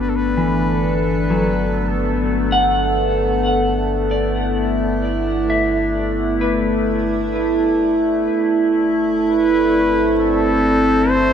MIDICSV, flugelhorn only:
0, 0, Header, 1, 2, 480
1, 0, Start_track
1, 0, Key_signature, 1, "major"
1, 0, Tempo, 923077
1, 14, Time_signature, 3, 2, 24, 8
1, 5892, End_track
2, 0, Start_track
2, 0, Title_t, "Flugelhorn"
2, 0, Program_c, 0, 56
2, 0, Note_on_c, 0, 71, 102
2, 48, Note_on_c, 0, 69, 72
2, 55, Note_off_c, 0, 71, 0
2, 82, Note_on_c, 0, 71, 100
2, 90, Note_off_c, 0, 69, 0
2, 492, Note_off_c, 0, 71, 0
2, 502, Note_on_c, 0, 71, 82
2, 979, Note_on_c, 0, 69, 65
2, 986, Note_off_c, 0, 71, 0
2, 1336, Note_off_c, 0, 69, 0
2, 4815, Note_on_c, 0, 71, 76
2, 5274, Note_off_c, 0, 71, 0
2, 5299, Note_on_c, 0, 69, 87
2, 5772, Note_on_c, 0, 72, 108
2, 5780, Note_off_c, 0, 69, 0
2, 5892, Note_off_c, 0, 72, 0
2, 5892, End_track
0, 0, End_of_file